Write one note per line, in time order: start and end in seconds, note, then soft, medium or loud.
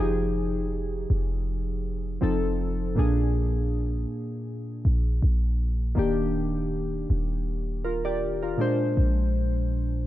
0.00 1.06 F1 loud
0.00 2.17 F3 medium
0.00 2.18 D#4 medium
0.00 2.18 G4 medium
0.00 2.19 G#4 medium
1.10 2.18 F1 loud
2.21 2.94 F1 loud
2.21 2.96 F3 medium
2.21 2.97 C4 medium
2.21 2.97 D#4 medium
2.21 2.97 A4 medium
2.95 4.06 A#1 loud
2.95 5.92 A#2 medium
2.95 5.93 A#3 medium
2.95 5.93 D4 medium
2.95 5.94 G#4 medium
4.85 5.21 A#1 medium
5.22 5.94 A#1 loud
5.95 7.06 D#1 loud
5.95 8.54 D#3 medium
5.95 8.55 A#3 medium
5.95 8.56 D4 medium
5.95 7.82 G4 medium
7.10 8.56 D#1 loud
7.85 8.04 F4 medium
7.85 8.04 A#4 medium
8.05 8.41 G4 medium
8.05 8.40 D5 medium
8.43 8.78 F4 medium
8.43 8.78 A#4 medium
8.57 10.07 A#2 medium
8.57 10.07 G#3 medium
8.57 10.07 D4 medium
8.57 10.07 C5 medium
8.97 10.07 A#1 loud